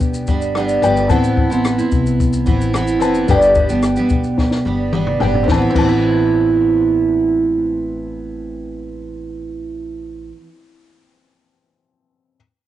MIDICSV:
0, 0, Header, 1, 5, 480
1, 0, Start_track
1, 0, Key_signature, 0, "minor"
1, 0, Tempo, 546448
1, 972, Time_signature, 4, 2, 24, 8
1, 11132, End_track
2, 0, Start_track
2, 0, Title_t, "Upright piano"
2, 0, Program_c, 0, 0
2, 0, Control_c, 0, 64, 127
2, 0, Note_on_c, 0, 62, 70
2, 0, Note_on_c, 0, 71, 70
2, 0, Note_on_c, 0, 79, 79
2, 719, Note_off_c, 0, 62, 0
2, 719, Note_on_c, 0, 62, 73
2, 732, Note_off_c, 0, 71, 0
2, 732, Note_on_c, 0, 71, 63
2, 737, Note_off_c, 0, 79, 0
2, 737, Note_on_c, 0, 79, 87
2, 899, Note_off_c, 0, 62, 0
2, 905, Note_off_c, 0, 71, 0
2, 908, Note_off_c, 0, 79, 0
2, 950, Note_on_c, 0, 60, 72
2, 962, Note_on_c, 0, 81, 83
2, 964, Note_on_c, 0, 71, 72
2, 982, Control_c, 0, 64, 0
2, 1116, Control_c, 0, 64, 127
2, 1655, Note_off_c, 0, 60, 0
2, 1661, Note_off_c, 0, 81, 0
2, 1662, Note_off_c, 0, 71, 0
2, 2629, Note_on_c, 0, 60, 69
2, 2645, Note_on_c, 0, 71, 67
2, 2651, Note_on_c, 0, 81, 81
2, 2815, Note_off_c, 0, 60, 0
2, 2823, Note_off_c, 0, 71, 0
2, 2825, Note_off_c, 0, 81, 0
2, 2881, Note_on_c, 0, 62, 72
2, 2894, Note_on_c, 0, 71, 67
2, 2904, Note_on_c, 0, 79, 80
2, 2905, Control_c, 0, 64, 0
2, 3079, Control_c, 0, 64, 127
2, 3581, Note_off_c, 0, 62, 0
2, 3588, Note_off_c, 0, 71, 0
2, 3593, Note_off_c, 0, 79, 0
2, 4563, Note_on_c, 0, 62, 71
2, 4575, Note_on_c, 0, 71, 60
2, 4578, Note_on_c, 0, 79, 73
2, 4742, Note_off_c, 0, 62, 0
2, 4748, Note_off_c, 0, 71, 0
2, 4750, Note_off_c, 0, 79, 0
2, 4771, Note_on_c, 0, 60, 72
2, 4809, Note_on_c, 0, 71, 64
2, 4827, Control_c, 0, 64, 0
2, 4844, Note_on_c, 0, 81, 74
2, 4925, Note_off_c, 0, 60, 0
2, 4945, Note_off_c, 0, 71, 0
2, 4964, Note_off_c, 0, 81, 0
2, 4988, Control_c, 0, 64, 127
2, 5007, Note_on_c, 0, 60, 79
2, 5045, Note_on_c, 0, 71, 70
2, 5082, Note_on_c, 0, 81, 75
2, 9005, Note_off_c, 0, 60, 0
2, 9044, Note_off_c, 0, 71, 0
2, 9081, Note_off_c, 0, 81, 0
2, 10860, Control_c, 0, 64, 0
2, 11132, End_track
3, 0, Start_track
3, 0, Title_t, "Steel-string acoustic guitar"
3, 0, Program_c, 1, 25
3, 0, Note_on_c, 1, 55, 38
3, 0, Note_on_c, 1, 59, 43
3, 0, Note_on_c, 1, 62, 46
3, 0, Note_on_c, 1, 67, 49
3, 235, Note_off_c, 1, 55, 0
3, 242, Note_off_c, 1, 67, 0
3, 246, Note_off_c, 1, 62, 0
3, 246, Note_on_c, 1, 55, 53
3, 248, Note_off_c, 1, 59, 0
3, 251, Note_on_c, 1, 59, 58
3, 255, Note_on_c, 1, 62, 63
3, 266, Note_on_c, 1, 67, 58
3, 474, Note_off_c, 1, 55, 0
3, 484, Note_on_c, 1, 55, 66
3, 487, Note_off_c, 1, 59, 0
3, 488, Note_off_c, 1, 62, 0
3, 497, Note_on_c, 1, 59, 62
3, 498, Note_on_c, 1, 62, 73
3, 499, Note_off_c, 1, 67, 0
3, 509, Note_on_c, 1, 67, 67
3, 713, Note_off_c, 1, 55, 0
3, 722, Note_off_c, 1, 59, 0
3, 723, Note_on_c, 1, 55, 63
3, 727, Note_off_c, 1, 62, 0
3, 733, Note_off_c, 1, 67, 0
3, 733, Note_on_c, 1, 59, 61
3, 738, Note_on_c, 1, 62, 58
3, 743, Note_on_c, 1, 67, 69
3, 962, Note_off_c, 1, 55, 0
3, 962, Note_on_c, 1, 45, 68
3, 964, Note_off_c, 1, 59, 0
3, 966, Note_on_c, 1, 52, 68
3, 971, Note_off_c, 1, 62, 0
3, 973, Note_on_c, 1, 60, 77
3, 975, Note_off_c, 1, 67, 0
3, 975, Note_on_c, 1, 59, 75
3, 979, Note_on_c, 1, 64, 79
3, 1306, Note_off_c, 1, 64, 0
3, 1317, Note_on_c, 1, 64, 58
3, 1318, Note_off_c, 1, 59, 0
3, 1327, Note_off_c, 1, 45, 0
3, 1329, Note_off_c, 1, 52, 0
3, 1329, Note_on_c, 1, 59, 56
3, 1332, Note_off_c, 1, 60, 0
3, 1341, Note_on_c, 1, 60, 46
3, 1554, Note_off_c, 1, 64, 0
3, 1564, Note_off_c, 1, 59, 0
3, 1564, Note_on_c, 1, 64, 48
3, 1573, Note_off_c, 1, 60, 0
3, 1574, Note_on_c, 1, 59, 44
3, 1583, Note_on_c, 1, 60, 43
3, 2156, Note_off_c, 1, 60, 0
3, 2159, Note_on_c, 1, 52, 56
3, 2166, Note_off_c, 1, 64, 0
3, 2167, Note_on_c, 1, 60, 54
3, 2169, Note_off_c, 1, 59, 0
3, 2172, Note_on_c, 1, 59, 59
3, 2177, Note_on_c, 1, 64, 62
3, 2391, Note_off_c, 1, 52, 0
3, 2395, Note_off_c, 1, 60, 0
3, 2401, Note_on_c, 1, 52, 63
3, 2402, Note_off_c, 1, 59, 0
3, 2406, Note_on_c, 1, 60, 67
3, 2411, Note_off_c, 1, 64, 0
3, 2413, Note_on_c, 1, 59, 66
3, 2422, Note_on_c, 1, 64, 72
3, 2624, Note_off_c, 1, 52, 0
3, 2630, Note_off_c, 1, 60, 0
3, 2635, Note_on_c, 1, 52, 65
3, 2641, Note_off_c, 1, 59, 0
3, 2641, Note_on_c, 1, 60, 66
3, 2644, Note_off_c, 1, 64, 0
3, 2652, Note_on_c, 1, 59, 68
3, 2655, Note_on_c, 1, 64, 65
3, 2884, Note_off_c, 1, 52, 0
3, 2887, Note_off_c, 1, 59, 0
3, 2887, Note_off_c, 1, 60, 0
3, 2889, Note_on_c, 1, 43, 66
3, 2891, Note_on_c, 1, 50, 71
3, 2893, Note_on_c, 1, 55, 69
3, 2894, Note_off_c, 1, 64, 0
3, 2897, Note_on_c, 1, 59, 73
3, 2898, Note_on_c, 1, 62, 68
3, 2904, Note_on_c, 1, 67, 79
3, 3233, Note_off_c, 1, 67, 0
3, 3239, Note_off_c, 1, 62, 0
3, 3244, Note_on_c, 1, 67, 49
3, 3246, Note_off_c, 1, 59, 0
3, 3249, Note_on_c, 1, 62, 52
3, 3251, Note_off_c, 1, 43, 0
3, 3252, Note_off_c, 1, 50, 0
3, 3253, Note_off_c, 1, 55, 0
3, 3256, Note_on_c, 1, 59, 50
3, 3266, Note_on_c, 1, 55, 44
3, 3475, Note_off_c, 1, 67, 0
3, 3485, Note_off_c, 1, 62, 0
3, 3485, Note_on_c, 1, 67, 51
3, 3490, Note_off_c, 1, 59, 0
3, 3496, Note_off_c, 1, 55, 0
3, 3496, Note_on_c, 1, 62, 47
3, 3501, Note_on_c, 1, 59, 38
3, 3506, Note_on_c, 1, 55, 41
3, 4074, Note_off_c, 1, 55, 0
3, 4084, Note_on_c, 1, 55, 55
3, 4090, Note_off_c, 1, 62, 0
3, 4090, Note_off_c, 1, 67, 0
3, 4096, Note_off_c, 1, 59, 0
3, 4099, Note_on_c, 1, 59, 55
3, 4100, Note_on_c, 1, 62, 51
3, 4110, Note_on_c, 1, 67, 54
3, 4319, Note_off_c, 1, 55, 0
3, 4330, Note_off_c, 1, 59, 0
3, 4330, Note_on_c, 1, 55, 65
3, 4337, Note_off_c, 1, 62, 0
3, 4339, Note_off_c, 1, 67, 0
3, 4341, Note_on_c, 1, 59, 63
3, 4349, Note_on_c, 1, 62, 68
3, 4349, Note_on_c, 1, 67, 62
3, 4565, Note_off_c, 1, 55, 0
3, 4574, Note_off_c, 1, 59, 0
3, 4575, Note_off_c, 1, 62, 0
3, 4575, Note_on_c, 1, 55, 57
3, 4582, Note_off_c, 1, 67, 0
3, 4584, Note_on_c, 1, 59, 58
3, 4585, Note_on_c, 1, 62, 67
3, 4594, Note_on_c, 1, 67, 69
3, 4776, Note_on_c, 1, 45, 64
3, 4815, Note_off_c, 1, 55, 0
3, 4819, Note_off_c, 1, 59, 0
3, 4820, Note_off_c, 1, 62, 0
3, 4824, Note_off_c, 1, 67, 0
3, 4824, Note_on_c, 1, 52, 72
3, 4864, Note_on_c, 1, 60, 76
3, 4899, Note_on_c, 1, 59, 67
3, 4934, Note_on_c, 1, 64, 70
3, 5008, Note_off_c, 1, 45, 0
3, 5012, Note_on_c, 1, 45, 78
3, 5038, Note_off_c, 1, 59, 0
3, 5056, Note_off_c, 1, 52, 0
3, 5059, Note_on_c, 1, 52, 77
3, 5099, Note_off_c, 1, 60, 0
3, 5103, Note_on_c, 1, 60, 73
3, 5137, Note_on_c, 1, 59, 72
3, 5169, Note_off_c, 1, 64, 0
3, 5173, Note_on_c, 1, 64, 81
3, 9045, Note_off_c, 1, 45, 0
3, 9093, Note_off_c, 1, 52, 0
3, 9136, Note_off_c, 1, 60, 0
3, 9170, Note_off_c, 1, 59, 0
3, 9206, Note_off_c, 1, 64, 0
3, 11132, End_track
4, 0, Start_track
4, 0, Title_t, "Upright bass"
4, 0, Program_c, 2, 32
4, 0, Note_on_c, 2, 35, 79
4, 212, Note_off_c, 2, 35, 0
4, 244, Note_on_c, 2, 31, 84
4, 693, Note_off_c, 2, 31, 0
4, 732, Note_on_c, 2, 31, 84
4, 953, Note_off_c, 2, 31, 0
4, 969, Note_on_c, 2, 33, 90
4, 1302, Note_off_c, 2, 33, 0
4, 1325, Note_on_c, 2, 33, 78
4, 1549, Note_off_c, 2, 33, 0
4, 1687, Note_on_c, 2, 36, 80
4, 2135, Note_off_c, 2, 36, 0
4, 2169, Note_on_c, 2, 33, 87
4, 2647, Note_off_c, 2, 33, 0
4, 2647, Note_on_c, 2, 29, 76
4, 2871, Note_off_c, 2, 29, 0
4, 2888, Note_on_c, 2, 31, 99
4, 3222, Note_off_c, 2, 31, 0
4, 3253, Note_on_c, 2, 31, 82
4, 3474, Note_off_c, 2, 31, 0
4, 3605, Note_on_c, 2, 35, 81
4, 4054, Note_off_c, 2, 35, 0
4, 4091, Note_on_c, 2, 31, 91
4, 4538, Note_off_c, 2, 31, 0
4, 4573, Note_on_c, 2, 31, 78
4, 4795, Note_off_c, 2, 31, 0
4, 4814, Note_on_c, 2, 33, 86
4, 4948, Note_off_c, 2, 33, 0
4, 5054, Note_on_c, 2, 33, 92
4, 9053, Note_off_c, 2, 33, 0
4, 11132, End_track
5, 0, Start_track
5, 0, Title_t, "Drums"
5, 6, Note_on_c, 9, 82, 57
5, 8, Note_on_c, 9, 36, 82
5, 94, Note_off_c, 9, 82, 0
5, 96, Note_off_c, 9, 36, 0
5, 125, Note_on_c, 9, 82, 58
5, 212, Note_off_c, 9, 82, 0
5, 239, Note_on_c, 9, 82, 44
5, 246, Note_on_c, 9, 36, 89
5, 327, Note_off_c, 9, 82, 0
5, 334, Note_off_c, 9, 36, 0
5, 367, Note_on_c, 9, 82, 45
5, 455, Note_off_c, 9, 82, 0
5, 486, Note_on_c, 9, 37, 114
5, 497, Note_on_c, 9, 82, 71
5, 574, Note_off_c, 9, 37, 0
5, 585, Note_off_c, 9, 82, 0
5, 605, Note_on_c, 9, 82, 53
5, 693, Note_off_c, 9, 82, 0
5, 732, Note_on_c, 9, 82, 53
5, 734, Note_on_c, 9, 37, 31
5, 820, Note_off_c, 9, 82, 0
5, 822, Note_off_c, 9, 37, 0
5, 852, Note_on_c, 9, 82, 42
5, 940, Note_off_c, 9, 82, 0
5, 968, Note_on_c, 9, 36, 104
5, 970, Note_on_c, 9, 82, 66
5, 1056, Note_off_c, 9, 36, 0
5, 1058, Note_off_c, 9, 82, 0
5, 1089, Note_on_c, 9, 82, 46
5, 1177, Note_off_c, 9, 82, 0
5, 1207, Note_on_c, 9, 36, 87
5, 1295, Note_off_c, 9, 36, 0
5, 1334, Note_on_c, 9, 82, 52
5, 1422, Note_off_c, 9, 82, 0
5, 1449, Note_on_c, 9, 37, 99
5, 1449, Note_on_c, 9, 82, 75
5, 1536, Note_off_c, 9, 37, 0
5, 1537, Note_off_c, 9, 82, 0
5, 1570, Note_on_c, 9, 82, 41
5, 1657, Note_off_c, 9, 82, 0
5, 1683, Note_on_c, 9, 82, 43
5, 1688, Note_on_c, 9, 36, 77
5, 1771, Note_off_c, 9, 82, 0
5, 1776, Note_off_c, 9, 36, 0
5, 1814, Note_on_c, 9, 82, 45
5, 1901, Note_off_c, 9, 82, 0
5, 1933, Note_on_c, 9, 36, 88
5, 1935, Note_on_c, 9, 82, 57
5, 2021, Note_off_c, 9, 36, 0
5, 2023, Note_off_c, 9, 82, 0
5, 2047, Note_on_c, 9, 82, 59
5, 2135, Note_off_c, 9, 82, 0
5, 2164, Note_on_c, 9, 82, 45
5, 2171, Note_on_c, 9, 36, 92
5, 2252, Note_off_c, 9, 82, 0
5, 2259, Note_off_c, 9, 36, 0
5, 2294, Note_on_c, 9, 82, 45
5, 2382, Note_off_c, 9, 82, 0
5, 2407, Note_on_c, 9, 37, 117
5, 2418, Note_on_c, 9, 82, 72
5, 2495, Note_off_c, 9, 37, 0
5, 2506, Note_off_c, 9, 82, 0
5, 2525, Note_on_c, 9, 82, 48
5, 2613, Note_off_c, 9, 82, 0
5, 2650, Note_on_c, 9, 82, 53
5, 2651, Note_on_c, 9, 37, 30
5, 2738, Note_off_c, 9, 82, 0
5, 2739, Note_off_c, 9, 37, 0
5, 2764, Note_on_c, 9, 82, 42
5, 2851, Note_off_c, 9, 82, 0
5, 2886, Note_on_c, 9, 82, 70
5, 2889, Note_on_c, 9, 36, 97
5, 2974, Note_off_c, 9, 82, 0
5, 2976, Note_off_c, 9, 36, 0
5, 3003, Note_on_c, 9, 82, 45
5, 3091, Note_off_c, 9, 82, 0
5, 3118, Note_on_c, 9, 82, 45
5, 3125, Note_on_c, 9, 36, 86
5, 3206, Note_off_c, 9, 82, 0
5, 3213, Note_off_c, 9, 36, 0
5, 3243, Note_on_c, 9, 82, 47
5, 3331, Note_off_c, 9, 82, 0
5, 3361, Note_on_c, 9, 37, 83
5, 3361, Note_on_c, 9, 82, 64
5, 3449, Note_off_c, 9, 37, 0
5, 3449, Note_off_c, 9, 82, 0
5, 3478, Note_on_c, 9, 82, 40
5, 3566, Note_off_c, 9, 82, 0
5, 3596, Note_on_c, 9, 82, 43
5, 3607, Note_on_c, 9, 36, 83
5, 3684, Note_off_c, 9, 82, 0
5, 3694, Note_off_c, 9, 36, 0
5, 3722, Note_on_c, 9, 82, 43
5, 3810, Note_off_c, 9, 82, 0
5, 3846, Note_on_c, 9, 38, 51
5, 3850, Note_on_c, 9, 36, 74
5, 3933, Note_off_c, 9, 38, 0
5, 3938, Note_off_c, 9, 36, 0
5, 3963, Note_on_c, 9, 38, 44
5, 4051, Note_off_c, 9, 38, 0
5, 4329, Note_on_c, 9, 47, 80
5, 4417, Note_off_c, 9, 47, 0
5, 4452, Note_on_c, 9, 45, 69
5, 4540, Note_off_c, 9, 45, 0
5, 4571, Note_on_c, 9, 43, 82
5, 4659, Note_off_c, 9, 43, 0
5, 4691, Note_on_c, 9, 43, 80
5, 4778, Note_off_c, 9, 43, 0
5, 4813, Note_on_c, 9, 38, 78
5, 4814, Note_on_c, 9, 36, 97
5, 4901, Note_off_c, 9, 38, 0
5, 4902, Note_off_c, 9, 36, 0
5, 5055, Note_on_c, 9, 36, 86
5, 5057, Note_on_c, 9, 49, 78
5, 5143, Note_off_c, 9, 36, 0
5, 5145, Note_off_c, 9, 49, 0
5, 11132, End_track
0, 0, End_of_file